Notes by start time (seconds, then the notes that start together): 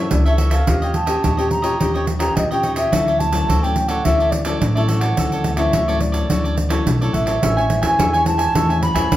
Already playing: C#4 E4 A4 C#5 E5
0.11 C#2 C#3 D5, pandeiro
0.26 A4 C#5 E5, pandeiro
0.37 C#4 E4 F#4 A4 C#5 E5, pandeiro
0.50 A4 C#5 E5 F5, pandeiro
0.66 D#2 D#3 C#4 D#4 F4 G4 C#5 D#5, pandeiro
0.82 G4 C#5 D#5, pandeiro
0.94 A5, pandeiro
1.06 C#4 F4 G4 C#5 D#5, pandeiro
1.23 D#2 A#2 D#4 G4 C#5 D#5, pandeiro
1.37 C#4 F4 G4 C#5 D#5, pandeiro
1.49 A#5, muted cavaquinho stroke, pandeiro
1.62 C#4 F4 G4 C#5 D#5, pandeiro
1.79 D#2 D#3 C#4 D#4 F4 G4 C#5 D#5, pandeiro
1.94 G4 C#5 D#5, pandeiro
2.06 muted cavaquinho stroke, pandeiro
2.19 C#4 F4 G4 C#5 D#5 A#5, pandeiro
2.36 D#2 A#2 D#5, pandeiro
2.51 C#4 F4 G4 C#5 D#5 G5, pandeiro
2.63 D#4 G4 C#5 D#5, pandeiro
2.76 G4 C#5 D#5 E5, pandeiro
2.92 D2 D3 F#3 C#4 E4 F#4 A4 C#5 D5, pandeiro
3.07 A4 C#5 D5, pandeiro
3.19 A5, pandeiro
3.32 F#3 C#4 E4 A4 C#5 D5, pandeiro
3.48 D2 A2 F#4 A4 C#5 D5, pandeiro
3.63 F#3 C#4 E4 A4 C#5 D5 G5, pandeiro
3.76 muted cavaquinho stroke, pandeiro
3.88 A4 C#5 D5 F#5, pandeiro
4.05 D2 D3 F#3 C#4 E4 F#4 A4 C#5 D5 E5, pandeiro
4.20 A4 C#5 D5, pandeiro
4.31 D5, muted cavaquinho stroke, pandeiro
4.45 F#3 C#4 E4 A4 C#5 D5, pandeiro
4.60 A1 A2 D5, pandeiro
4.75 F#3 C#4 E4 A4 C#5 D5 E5, pandeiro
4.88 F#4 A4 C#5 D5, pandeiro
4.99 A4 C#5 D5 F#5, pandeiro
5.17 D2 D3 F#3 C#4 E4 F#4 A4 C#5 D5, pandeiro
5.32 A4 C#5 D5, pandeiro
5.44 pandeiro
5.56 F#3 C#4 E4 A4 C#5 D5 E5, pandeiro
5.72 D2 A2 F#4 A4 C#5 D5, pandeiro
5.88 F#3 C#4 E4 A4 C#5 D5, pandeiro
6.00 D5, muted cavaquinho stroke, pandeiro
6.12 A4 C#5 D5, pandeiro
6.29 D2 D3 F#3 C#4 E4 F#4 A4 C#5 D5, pandeiro
6.44 A4 C#5 D5, pandeiro
6.57 muted cavaquinho stroke, pandeiro
6.69 F#3 C#4 E4 A4 C#5 D5, pandeiro
6.86 B1 A2, pandeiro
7.01 F#3 C#4 E4 A4 C#5 D5, pandeiro
7.12 A1 F#4 A4 C#5 D5 E5, pandeiro
7.26 A4 C#5 D5, pandeiro
7.42 A1 A2 G#3 C#4 E4 A4 C#5 E5 G#5, pandeiro
7.57 C#5 E5 G#5, pandeiro
7.70 pandeiro
7.82 E2 G#3 C#4 E4 C#5 E5 G#5, pandeiro
7.98 E2 E3 A4 C#5 E5 G#5, pandeiro
8.13 C#5 E5 G#5, pandeiro
8.25 G#3 C#4 E4 A5, muted cavaquinho stroke, pandeiro
8.38 C#5 E5 G#5, pandeiro
8.55 E2 A2 G#3 C#4 E4 A4 C#5 E5 G#5, pandeiro
8.69 C#5 E5 G#5, pandeiro
8.82 B5, muted cavaquinho stroke, pandeiro
8.94 E2 G#3 C#4 E4 C#5 E5 G#5, pandeiro
9.11 E2 E3, pandeiro